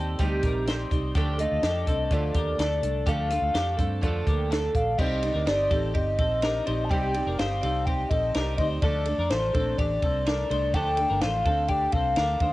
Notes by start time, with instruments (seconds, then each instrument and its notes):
Already playing: fingered electric bass D#2, steel-string acoustic guitar C4 D#4 G4 D5, clean electric guitar C4 A4, soft synth lead G5
0.19 fingered electric bass D2, steel-string acoustic guitar C3 G3 C4 D#4 G4 D5, clean electric guitar C4 G4, kick, closed hi-hat
0.43 fingered electric bass A#1, clean electric guitar D4 A#4, kick, closed hi-hat
0.66 steel-string acoustic guitar C4 D#4 G4 D5, clean electric guitar D#4 C5, snare, closed hi-hat
0.91 fingered electric bass C2, steel-string acoustic guitar C4 D#4 G4 D5, kick, closed hi-hat
1.15 fingered electric bass D2, steel-string acoustic guitar D3 F3 A3 D4 A4, clean electric guitar D4 G4, kick, closed hi-hat
1.38 clean electric guitar A3 F4, steel-string acoustic guitar A3 D4 A4, soft synth lead D#5, closed hi-hat
1.52 fingered electric bass D2
1.63 fingered electric bass F2, steel-string acoustic guitar F3 A3 D4 A4, clean electric guitar D4 G4, snare, closed hi-hat
1.86 fingered electric bass C2, steel-string acoustic guitar A3 D4 A4, clean electric guitar C4 A4, kick, closed hi-hat
2.04 soft synth lead D#5
2.10 fingered electric bass D2, steel-string acoustic guitar D3 F3 A3 D4 A4, clean electric guitar A3 F4, soft synth lead D5, kick, closed hi-hat
2.34 fingered electric bass D#2, clean electric guitar A#3 G4, kick, closed hi-hat
2.58 fingered electric bass D2, steel-string acoustic guitar F3 A3 D4 A4, clean electric guitar D4 A4, snare, closed hi-hat
2.81 fingered electric bass C2, steel-string acoustic guitar A3 D4 A4, closed hi-hat
3.06 fingered electric bass D2, steel-string acoustic guitar D3 F3 A3 D4 A4, clean electric guitar D4 G4, soft synth lead F5, kick, closed hi-hat
3.29 clean electric guitar A3 F4, steel-string acoustic guitar A3 D4 A4, closed hi-hat
3.42 fingered electric bass D2
3.54 fingered electric bass F2, steel-string acoustic guitar F3 A3 D4 A4, clean electric guitar D4 G4, snare, closed hi-hat
3.77 fingered electric bass G2, steel-string acoustic guitar A3 D4 A4, clean electric guitar C4 A4, kick, closed hi-hat
4.01 fingered electric bass F2, steel-string acoustic guitar D3 F3 A3 D4 A4, clean electric guitar A3 F4, kick, closed hi-hat
4.27 fingered electric bass D2, clean electric guitar A#3 G4, kick, closed hi-hat
4.50 steel-string acoustic guitar F3 A3 D4 A4, clean electric guitar D4 A4, snare, closed hi-hat
4.75 fingered electric bass A#1, soft synth lead F5, kick, closed hi-hat
4.98 fingered electric bass C2, steel-string acoustic guitar C3 G3 C4 D#4 G4 D5, clean electric guitar C4 G4, soft synth lead D#5, kick, crash
5.22 steel-string acoustic guitar C4 D#4 G4 D5, ride
5.34 fingered electric bass D2, clean electric guitar D4 A#4
5.45 fingered electric bass G1, steel-string acoustic guitar C4 D#4 G4 D5, clean electric guitar D#4 C5, soft synth lead D5, snare, ride
5.71 fingered electric bass A1, clean electric guitar C4 A4, steel-string acoustic guitar C4 D#4 G4, kick, ride
5.94 fingered electric bass G1, clean electric guitar C4 G4, soft synth lead D#5, kick, ride
6.18 fingered electric bass A#1, clean electric guitar C4 A4, kick, ride
6.41 steel-string acoustic guitar C4 D#4 G4 D5, clean electric guitar D4 A#4, snare, ride
6.65 fingered electric bass A#1, steel-string acoustic guitar C4 D#4 G4 D5, clean electric guitar D#4 C5, ride
6.84 soft synth lead A5
6.89 fingered electric bass C2, steel-string acoustic guitar C3 G3 C4 D#4 G4 D5, clean electric guitar C4 G4, soft synth lead G5, kick, ride
7.14 steel-string acoustic guitar C4 D#4 G4 D5, ride
7.26 fingered electric bass F1, clean electric guitar D4 A#4
7.38 fingered electric bass G1, steel-string acoustic guitar C4 D#4 G4 D5, clean electric guitar D#4 C5, soft synth lead F5, snare, ride
7.61 fingered electric bass C2, clean electric guitar C4 A4, steel-string acoustic guitar C4 D#4 G4 D5, ride
7.85 clean electric guitar C4 G4, soft synth lead G5, kick, ride
8.10 fingered electric bass A#1, clean electric guitar C4 A4, soft synth lead D#5, kick, ride
8.34 fingered electric bass C2, steel-string acoustic guitar C4 D#4 G4 D5, clean electric guitar D4 A#4, snare, ride
8.57 fingered electric bass D2, clean electric guitar D#4 C5, steel-string acoustic guitar D#4 G4 D5, soft synth lead D#5, kick, ride
8.61 steel-string acoustic guitar C4
8.81 fingered electric bass D2, steel-string acoustic guitar D3 F3 A3 D4 A4, clean electric guitar D4 A4, soft synth lead D5, kick, ride
9.05 steel-string acoustic guitar A3 D4 A4, ride
9.18 fingered electric bass F2, clean electric guitar D4 A#4
9.30 fingered electric bass A1, steel-string acoustic guitar F3 A3 D4 A4, clean electric guitar F4 C5, soft synth lead C5, snare, ride
9.53 fingered electric bass A#1, steel-string acoustic guitar A3 D4 A4, clean electric guitar C4 A4, kick, ride
9.77 fingered electric bass A1, clean electric guitar D4 G4, soft synth lead D5, kick, ride
10.03 fingered electric bass C2, clean electric guitar C4 A4, kick, ride
10.25 steel-string acoustic guitar F3 A3 D4 A4, clean electric guitar D4 A#4, snare, ride
10.49 fingered electric bass C2, steel-string acoustic guitar A3 D4 A4, clean electric guitar D#4 C5, ride
10.74 fingered electric bass D2, steel-string acoustic guitar D3 F3 A3 D4 A4, clean electric guitar D4 A4, soft synth lead G5, kick, ride
10.97 steel-string acoustic guitar A3 D4 A4, ride
11.10 fingered electric bass G1, clean electric guitar D4 A#4
11.21 fingered electric bass A1, steel-string acoustic guitar F3 A3 D4 A4, clean electric guitar F4 C5, soft synth lead F5, snare, ride
11.45 fingered electric bass D2, steel-string acoustic guitar A3 D4 A4, clean electric guitar C4 A4, kick, ride
11.68 clean electric guitar D4 G4, soft synth lead G5, kick, ride
11.92 fingered electric bass C2, clean electric guitar C4 A4, soft synth lead F5, kick, ride
12.16 fingered electric bass D2, steel-string acoustic guitar F3 A3 D4, clean electric guitar D4 A#4, snare, ride
12.20 steel-string acoustic guitar A4
12.40 fingered electric bass D#2, steel-string acoustic guitar A3 D4 A4, clean electric guitar D#4 C5, soft synth lead F5, kick, ride